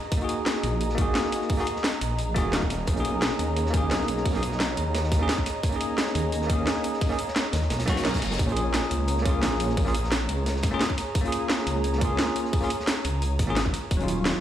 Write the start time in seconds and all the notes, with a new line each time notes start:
Already playing: G#4 D#5 A#5
0.12 kick, closed hi-hat
0.17 A#3 D#4, closed hi-hat
0.22 F#4 G#4
0.29 closed hi-hat
0.46 snare, closed hi-hat
0.55 snare
0.63 A#1, closed hi-hat
0.81 closed hi-hat
0.89 snare
0.95 A#3 D#4, kick, closed hi-hat
0.99 F#4 G#4
1.15 snare, closed hi-hat
1.24 snare
1.32 closed hi-hat
1.41 snare
1.49 kick, closed hi-hat, open hi-hat
1.57 A#3 D#4 F#4 G#4, snare
1.67 closed hi-hat
1.76 snare
1.83 snare, closed hi-hat
2.01 A#1, closed hi-hat
2.18 closed hi-hat
2.34 D#1 A#3 D#4 F#4 G#4, kick, snare, closed hi-hat
2.51 A#3 D#4 F#4 A#4, snare, closed hi-hat
2.62 kick
2.70 snare, closed hi-hat
2.87 B1 C#5 D#5, kick, closed hi-hat
2.93 A#3 C#4, closed hi-hat
2.98 D#4 G#4
3.05 closed hi-hat
3.21 snare, closed hi-hat
3.31 snare
3.39 D#2, closed hi-hat
3.56 closed hi-hat
3.66 snare
3.70 A#3 C#4, kick, closed hi-hat
3.75 D#4 G#4
3.91 B1, snare, closed hi-hat
4.01 snare
4.08 B1, closed hi-hat
4.17 snare
4.25 kick, closed hi-hat, open hi-hat
4.33 A#3 C#4 D#4 G#4, snare
4.43 closed hi-hat
4.52 snare
4.60 snare, closed hi-hat
4.77 D#2, closed hi-hat
4.95 snare, closed hi-hat
5.04 snare
5.12 kick, snare, closed hi-hat
5.19 A#3 C#4 D#4 G#4
5.29 snare, closed hi-hat
5.38 kick
5.46 snare, closed hi-hat
5.63 kick, closed hi-hat
5.69 A#3 C#4, closed hi-hat
5.74 D#4 G#4
5.81 closed hi-hat
5.98 snare, closed hi-hat
6.07 snare
6.15 D#2, closed hi-hat
6.32 closed hi-hat
6.42 snare
6.46 A#3 C#4, kick, closed hi-hat
6.51 D#4 G#4
6.67 snare, closed hi-hat
6.76 snare
6.84 closed hi-hat
6.93 snare
7.01 kick, closed hi-hat, open hi-hat
7.09 A#3 C#4 D#4 G#4, snare
7.19 closed hi-hat
7.28 snare
7.36 snare, closed hi-hat
7.53 D#2, snare, closed hi-hat
7.61 snare
7.70 B1, snare, closed hi-hat, reverse cymbal
7.79 snare, closed hi-hat
7.86 A#3 C#4 D#4 F#4, kick, snare, closed hi-hat
7.96 snare, closed hi-hat
8.03 A#3 C#4 D#4 A#4, snare, closed hi-hat
8.14 kick, snare, closed hi-hat
8.22 F#1, snare, closed hi-hat
8.31 snare, closed hi-hat
8.39 A#1 G#4 A#5, kick, closed hi-hat
8.45 A#3 C#4, closed hi-hat
8.50 F4 G#4
8.56 closed hi-hat
8.74 snare, closed hi-hat
8.83 snare
8.91 C#2, closed hi-hat
9.08 closed hi-hat
9.18 snare
9.22 A#3 C#4, kick, closed hi-hat
9.27 F4 G#4
9.42 A#1, snare, closed hi-hat
9.52 snare
9.60 A#1, closed hi-hat
9.69 snare
9.77 kick, closed hi-hat, open hi-hat
9.85 A#3 C#4 F4 G#4, snare
9.95 closed hi-hat
10.04 snare
10.12 snare, closed hi-hat
10.29 C#2, closed hi-hat
10.46 snare, closed hi-hat
10.56 snare
10.63 kick, snare, closed hi-hat
10.71 A#3 C#4 F4 G#4
10.81 snare, closed hi-hat
10.90 kick
10.98 snare, closed hi-hat
11.15 kick, closed hi-hat
11.21 A#3 C#4
11.25 F4 G#4, closed hi-hat
11.32 closed hi-hat
11.49 snare, closed hi-hat
11.59 snare
11.67 C#2, closed hi-hat
11.84 closed hi-hat
11.93 snare
11.98 A#3 C#4, kick, closed hi-hat
12.03 F4 G#4
12.19 snare, closed hi-hat
12.28 snare
12.36 closed hi-hat
12.45 snare
12.53 kick, closed hi-hat, open hi-hat
12.61 A#3 C#4 F4 G#4, snare
12.70 closed hi-hat
12.80 snare
12.87 snare, closed hi-hat
13.04 C#2, closed hi-hat
13.22 closed hi-hat
13.39 G#1, kick, snare, closed hi-hat
13.47 A#3 C#4 F4 G#4
13.56 snare, closed hi-hat
13.66 kick
13.73 F#3 F5 C#6, snare, closed hi-hat
13.91 D#1, kick, closed hi-hat
13.97 F#3 C#4, closed hi-hat
14.01 D#4 F4
14.08 closed hi-hat
14.25 snare, closed hi-hat
14.35 snare